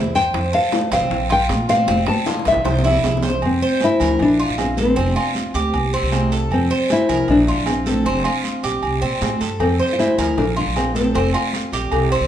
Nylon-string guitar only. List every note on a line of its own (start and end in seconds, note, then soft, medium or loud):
0.00 0.13 C5 medium
0.15 0.51 G5 loud
0.55 0.90 F5 medium
0.93 1.28 F5 medium
1.32 1.67 G5 loud
1.70 2.05 F5 loud
2.08 2.43 A5 loud
2.48 2.83 E5 loud
3.46 3.80 C4 medium
3.84 4.22 E4 loud
4.22 4.57 D4 loud
4.61 4.79 C4 medium
4.80 5.79 C4 medium
5.79 6.29 A#3 medium
6.53 6.92 C4 medium
6.92 7.27 E4 loud
7.31 7.65 D4 loud
7.69 7.87 C4 medium
7.88 9.38 C4 medium
9.62 9.93 C4 medium
9.93 9.99 F4 medium
10.00 10.39 E4 loud
10.39 10.44 D4 loud
10.58 10.63 D4 medium
10.78 10.94 C4 medium
10.95 12.27 C4 medium